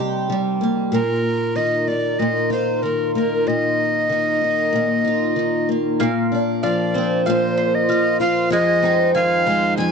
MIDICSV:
0, 0, Header, 1, 4, 480
1, 0, Start_track
1, 0, Tempo, 633580
1, 695, Time_signature, 4, 2, 24, 8
1, 7512, End_track
2, 0, Start_track
2, 0, Title_t, "Recorder"
2, 0, Program_c, 0, 74
2, 704, Note_on_c, 0, 70, 89
2, 1183, Note_on_c, 0, 75, 80
2, 1194, Note_off_c, 0, 70, 0
2, 1424, Note_on_c, 0, 74, 83
2, 1435, Note_off_c, 0, 75, 0
2, 1658, Note_on_c, 0, 75, 88
2, 1670, Note_off_c, 0, 74, 0
2, 1898, Note_off_c, 0, 75, 0
2, 1913, Note_on_c, 0, 72, 77
2, 2140, Note_on_c, 0, 70, 72
2, 2152, Note_off_c, 0, 72, 0
2, 2379, Note_off_c, 0, 70, 0
2, 2387, Note_on_c, 0, 70, 72
2, 2633, Note_on_c, 0, 75, 86
2, 2644, Note_off_c, 0, 70, 0
2, 4307, Note_off_c, 0, 75, 0
2, 5022, Note_on_c, 0, 74, 77
2, 5469, Note_off_c, 0, 74, 0
2, 5499, Note_on_c, 0, 72, 85
2, 5870, Note_on_c, 0, 75, 92
2, 5881, Note_off_c, 0, 72, 0
2, 6211, Note_off_c, 0, 75, 0
2, 6216, Note_on_c, 0, 77, 93
2, 6438, Note_off_c, 0, 77, 0
2, 6453, Note_on_c, 0, 75, 100
2, 6902, Note_off_c, 0, 75, 0
2, 6931, Note_on_c, 0, 77, 97
2, 7379, Note_off_c, 0, 77, 0
2, 7404, Note_on_c, 0, 80, 104
2, 7512, Note_off_c, 0, 80, 0
2, 7512, End_track
3, 0, Start_track
3, 0, Title_t, "Mandolin"
3, 0, Program_c, 1, 25
3, 4544, Note_on_c, 1, 58, 80
3, 4552, Note_on_c, 1, 77, 61
3, 5020, Note_off_c, 1, 77, 0
3, 5023, Note_on_c, 1, 77, 72
3, 5260, Note_on_c, 1, 72, 60
3, 5496, Note_off_c, 1, 77, 0
3, 5499, Note_on_c, 1, 77, 65
3, 5740, Note_off_c, 1, 72, 0
3, 5740, Note_on_c, 1, 72, 62
3, 5981, Note_off_c, 1, 77, 0
3, 5981, Note_on_c, 1, 77, 62
3, 6215, Note_off_c, 1, 77, 0
3, 6218, Note_off_c, 1, 72, 0
3, 6218, Note_on_c, 1, 72, 60
3, 6451, Note_off_c, 1, 58, 0
3, 6454, Note_on_c, 1, 56, 77
3, 6461, Note_on_c, 1, 80, 60
3, 6692, Note_on_c, 1, 63, 59
3, 6926, Note_off_c, 1, 80, 0
3, 6929, Note_on_c, 1, 80, 66
3, 7168, Note_off_c, 1, 72, 0
3, 7171, Note_on_c, 1, 72, 58
3, 7407, Note_off_c, 1, 80, 0
3, 7410, Note_on_c, 1, 80, 67
3, 7512, Note_off_c, 1, 56, 0
3, 7512, Note_off_c, 1, 63, 0
3, 7512, Note_off_c, 1, 72, 0
3, 7512, Note_off_c, 1, 80, 0
3, 7512, End_track
4, 0, Start_track
4, 0, Title_t, "Steel-string acoustic guitar"
4, 0, Program_c, 2, 25
4, 0, Note_on_c, 2, 48, 70
4, 0, Note_on_c, 2, 55, 63
4, 0, Note_on_c, 2, 58, 47
4, 0, Note_on_c, 2, 63, 49
4, 0, Note_on_c, 2, 67, 61
4, 211, Note_off_c, 2, 55, 0
4, 224, Note_on_c, 2, 55, 57
4, 457, Note_off_c, 2, 58, 0
4, 460, Note_on_c, 2, 58, 49
4, 692, Note_off_c, 2, 48, 0
4, 695, Note_on_c, 2, 46, 69
4, 750, Note_off_c, 2, 67, 0
4, 753, Note_off_c, 2, 55, 0
4, 1178, Note_on_c, 2, 51, 63
4, 1417, Note_off_c, 2, 63, 0
4, 1420, Note_on_c, 2, 63, 50
4, 1653, Note_off_c, 2, 46, 0
4, 1662, Note_on_c, 2, 46, 72
4, 1894, Note_on_c, 2, 65, 59
4, 2134, Note_off_c, 2, 51, 0
4, 2143, Note_on_c, 2, 51, 57
4, 2385, Note_off_c, 2, 58, 0
4, 2388, Note_on_c, 2, 58, 50
4, 2618, Note_off_c, 2, 46, 0
4, 2627, Note_on_c, 2, 46, 68
4, 3093, Note_off_c, 2, 51, 0
4, 3102, Note_on_c, 2, 51, 59
4, 3335, Note_off_c, 2, 63, 0
4, 3344, Note_on_c, 2, 63, 49
4, 3571, Note_off_c, 2, 46, 0
4, 3580, Note_on_c, 2, 46, 70
4, 3820, Note_off_c, 2, 65, 0
4, 3823, Note_on_c, 2, 65, 57
4, 4051, Note_off_c, 2, 51, 0
4, 4061, Note_on_c, 2, 51, 54
4, 4306, Note_off_c, 2, 58, 0
4, 4309, Note_on_c, 2, 58, 46
4, 4536, Note_off_c, 2, 46, 0
4, 4545, Note_on_c, 2, 46, 80
4, 4592, Note_off_c, 2, 51, 0
4, 4594, Note_off_c, 2, 63, 0
4, 4786, Note_on_c, 2, 62, 57
4, 5026, Note_on_c, 2, 53, 73
4, 5263, Note_off_c, 2, 58, 0
4, 5266, Note_on_c, 2, 60, 58
4, 5498, Note_off_c, 2, 46, 0
4, 5507, Note_on_c, 2, 46, 84
4, 5740, Note_off_c, 2, 62, 0
4, 5972, Note_off_c, 2, 53, 0
4, 5975, Note_on_c, 2, 53, 67
4, 6209, Note_off_c, 2, 65, 0
4, 6212, Note_on_c, 2, 65, 59
4, 6442, Note_on_c, 2, 41, 80
4, 6459, Note_off_c, 2, 46, 0
4, 6686, Note_off_c, 2, 60, 0
4, 6686, Note_on_c, 2, 60, 60
4, 6926, Note_off_c, 2, 53, 0
4, 6929, Note_on_c, 2, 51, 73
4, 6952, Note_off_c, 2, 65, 0
4, 7171, Note_on_c, 2, 56, 57
4, 7396, Note_off_c, 2, 41, 0
4, 7405, Note_on_c, 2, 41, 84
4, 7512, Note_off_c, 2, 41, 0
4, 7512, Note_off_c, 2, 51, 0
4, 7512, Note_off_c, 2, 56, 0
4, 7512, Note_off_c, 2, 60, 0
4, 7512, End_track
0, 0, End_of_file